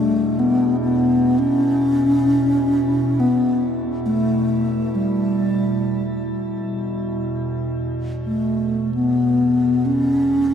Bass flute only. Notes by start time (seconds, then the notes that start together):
Already playing: A3
0.39 B3
0.81 B3
1.39 C#4
3.20 B3
4.06 A3
4.95 G3
8.25 A3
8.94 B3
9.86 C#4